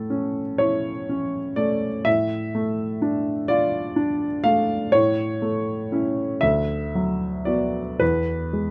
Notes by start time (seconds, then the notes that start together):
Already playing: A2 A3 A4
0.10 C#4
0.58 E4 C#5
1.09 C#4
1.56 A3 D5
2.05 A2 E5
2.55 A3
3.02 D4
3.48 F4 D5
3.96 D4
4.44 A3 F5
4.92 A2 C#5
5.42 A3
5.92 C#4 E4
6.41 D2 E5
6.95 F#3
7.45 B3 F#4 D5
8.00 E2 B4
8.53 G#3